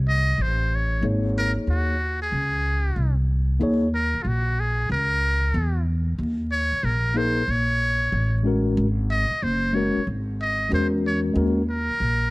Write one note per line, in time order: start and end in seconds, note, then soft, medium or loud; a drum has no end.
0.00 0.35 C2 medium
0.09 0.44 D#5 loud
0.38 0.99 A1 medium
0.42 0.77 C5 medium
0.75 1.05 C#5 medium
1.01 1.54 G#1 medium
1.01 1.95 A#3 medium
1.01 1.95 D#4 soft
1.01 1.96 G#4 soft
1.01 1.96 C#5 medium
1.38 1.52 A#4 loud
1.56 muted upright bass stroke soft
1.67 2.29 D#2 medium
1.67 2.19 F#4 medium
2.22 3.15 G#4 medium
2.32 2.93 C#2 medium
2.96 3.58 C2 medium
3.60 4.12 D#2 loud
3.60 3.86 A#3 medium
3.60 3.86 D#4 medium
3.60 3.87 G#4 medium
3.60 3.88 C#5 medium
3.95 4.24 A#4 medium
4.14 muted upright bass stroke soft
4.23 4.86 A#1 medium
4.23 4.29 F4 medium
4.28 4.61 F#4 medium
4.60 4.91 G#4 medium
4.90 5.51 C#2 medium
4.90 5.84 A#4 loud
5.54 6.16 E2 loud
6.19 6.70 D#2 medium
6.52 6.87 C#5 loud
6.72 muted upright bass stroke soft
6.83 7.45 A#1 medium
6.83 7.19 A#4 medium
7.14 7.41 A#3 medium
7.14 7.41 D#4 medium
7.14 7.42 G#4 medium
7.14 7.52 C5 medium
7.18 7.43 A#4 medium
7.48 8.09 A#1 medium
7.48 8.46 C#5 loud
8.12 8.74 A1 medium
8.43 8.85 G#3 medium
8.43 8.85 C#4 medium
8.43 8.86 F#4 medium
8.43 8.87 A#4 medium
8.77 9.28 G#1 loud
9.11 9.45 D#5 loud
9.31 muted upright bass stroke soft
9.42 9.93 F#1 medium
9.42 9.76 C5 medium
9.73 9.99 G#3 medium
9.73 10.00 C#4 medium
9.73 10.00 F#4 medium
9.73 10.01 A#4 medium
9.73 10.07 C#5 medium
9.96 muted upright bass stroke soft
10.07 10.68 G#1 medium
10.41 10.70 D#5 medium
10.69 11.32 E2 loud
10.69 11.32 G#3 medium
10.69 11.33 C#4 medium
10.69 11.35 F#4 medium
10.73 11.36 A#4 medium
10.73 10.88 C5 medium
11.07 11.20 C#5 medium
11.34 11.86 D#2 loud
11.34 11.60 G#3 medium
11.34 11.61 C#4 medium
11.34 11.61 F#4 medium
11.34 11.62 A#4 medium
11.70 12.30 A#4 loud
11.89 muted upright bass stroke soft
12.00 12.30 A#1 medium